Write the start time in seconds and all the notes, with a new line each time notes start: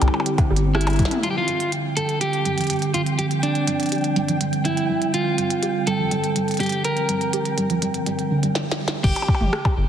Already playing: D3 G3 C4 E4 G4
0.02 C2 G3, closed hi-hat, percussion blips
0.08 percussion blips
0.14 percussion blips
0.20 percussion blips
0.26 G4, closed hi-hat
0.38 kick, cross-stick, closed hi-hat, percussion blips
0.50 G1 G4
0.56 closed hi-hat
0.75 E4 G4, cross-stick
0.81 closed hi-hat
0.87 closed hi-hat, percussion blips
0.90 closed hi-hat
0.93 closed hi-hat
0.96 closed hi-hat
0.99 G3, kick, closed hi-hat
1.05 snare, closed hi-hat
1.08 closed hi-hat
1.11 closed hi-hat, mid tom
1.23 D3 G3 F4 G5, closed hi-hat
1.31 G4
1.37 F3 G3 F4
1.42 C4
1.48 G3, closed hi-hat
1.60 closed hi-hat
1.72 closed hi-hat
1.97 G3 A4, closed hi-hat
2.09 closed hi-hat
2.21 G4, closed hi-hat
2.33 closed hi-hat
2.45 G3, closed hi-hat
2.58 F3, closed hi-hat
2.61 closed hi-hat
2.64 closed hi-hat
2.67 closed hi-hat
2.70 G3, closed hi-hat
2.73 closed hi-hat
2.76 closed hi-hat
2.79 closed hi-hat
2.82 closed hi-hat
2.94 G3 F4, closed hi-hat
3.06 closed hi-hat
3.19 G3 G4, closed hi-hat
3.31 closed hi-hat
3.43 D4, closed hi-hat
3.55 closed hi-hat
3.67 G3, closed hi-hat
3.80 closed hi-hat
3.83 closed hi-hat
3.86 closed hi-hat
3.89 G4, closed hi-hat
3.92 closed hi-hat
3.95 closed hi-hat
3.98 closed hi-hat
4.01 closed hi-hat
4.04 closed hi-hat
4.16 G3, closed hi-hat
4.29 F3, closed hi-hat
4.41 G3, closed hi-hat
4.53 closed hi-hat
4.65 G3 E4, closed hi-hat
4.77 closed hi-hat
4.90 G3
5.02 closed hi-hat
5.14 F4, closed hi-hat
5.38 G3, closed hi-hat
5.50 closed hi-hat
5.63 G4, closed hi-hat
5.87 G3 A4, closed hi-hat
5.99 F3
6.11 G3, closed hi-hat
6.24 closed hi-hat
6.36 G3, closed hi-hat
6.48 closed hi-hat
6.51 closed hi-hat
6.54 closed hi-hat
6.57 closed hi-hat
6.60 G3 G4, closed hi-hat
6.63 closed hi-hat
6.66 closed hi-hat
6.69 closed hi-hat
6.72 closed hi-hat
6.85 A#4, closed hi-hat
6.97 closed hi-hat
7.09 G3, closed hi-hat
7.21 closed hi-hat
7.33 G4, closed hi-hat
7.45 closed hi-hat
7.58 G3, closed hi-hat
7.70 F3, closed hi-hat
7.82 G3, closed hi-hat
7.94 closed hi-hat
8.06 G3, closed hi-hat
8.19 closed hi-hat
8.31 D3
8.43 G3, closed hi-hat
8.55 snare
8.72 snare
8.88 snare
9.04 G1 G4, kick, crash
9.16 closed hi-hat, percussion blips
9.22 percussion blips
9.28 kick, percussion blips
9.35 percussion blips
9.41 G1, mid tom
9.53 cross-stick
9.65 kick, percussion blips
9.77 G1